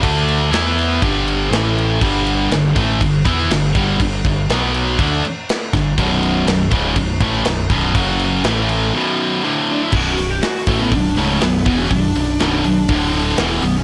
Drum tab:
CC |xxxxxxxx|xxxxxxxx|xxxxxxxx|xxxxxxxx|
HH |--------|--------|--------|--------|
SD |--o---o-|--o---o-|--o---oo|--o---o-|
BD |o---o---|o--ooo-o|oo--o--o|o--ooo-o|

CC |xxxx----|x-------|--------|
HH |--------|-ooooooo|oooooo-o|
SD |--o-----|--o---o-|--o---o-|
BD |o-------|o--oo--o|o---o---|